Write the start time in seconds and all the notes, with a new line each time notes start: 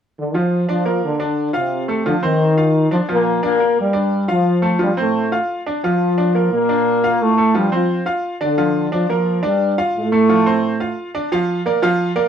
0.19 D3 D4
0.34 F3 F4
0.69 F3 D4 F4 D5
0.85 A#3 A#4
1.04 D3 D4
1.20 D4 D5
1.53 C3 C4 F4 F5
1.88 A3 A4
2.06 D3 F3 D4 F4
2.23 D#3 C4 D#4 C5
2.57 F4 F5
2.91 F3 D4 F4 D5
3.09 A#2 F3 A#3 F4
3.43 A#2 A#3 D4 D5
3.60 A#3 A#4
3.78 G2 G3
3.93 D4 D5
4.28 F3 F4 F5
4.62 A3 A4
4.79 G2 F3 G3 F4
4.97 A2 A3 C4 C5
5.32 F4 F5
5.67 D4 D5
5.84 F3 F4
6.18 D4 D5
6.35 A#3 A#4
6.52 A#2 A#3
6.69 D4 D5
7.04 F4 F5
7.20 A2 A3
7.38 A3 A4
7.55 G2 F3 G3 F4
7.72 F3 C4 F4 C5
8.06 F4 F5
8.41 D3 D4 D5
8.58 F3 F4
8.92 F3 D4 F4 D5
9.09 F3 A#3 F4 A#4
9.43 G2 G3 D4 D5
9.78 F4 F5
9.95 A2 A3
10.12 A3 A4
10.29 F3 F4
10.46 C4 C5
10.80 F4 F5
11.15 D4 D5
11.32 F3 F4 F5
11.66 A#3 A#4 D5
11.82 F3 F4 F5
12.16 A#3 A#4 D5